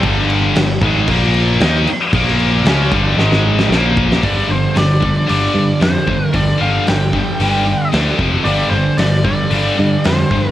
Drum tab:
CC |x-x-x-x-x-x-x-x-|x-x-x-x---------|----------------|----------------|
HH |----------------|----------------|o---o---o---o---|o---o---o---o---|
SD |----o-------o---|-o--o---oo-oo--o|----o-------o---|----o-------o---|
BD |o-----o-o-------|o-----o-------o-|o-----o-------o-|o-----o-------o-|

CC |----------------|
HH |o---o---o---o---|
SD |----o-------o---|
BD |------o-------o-|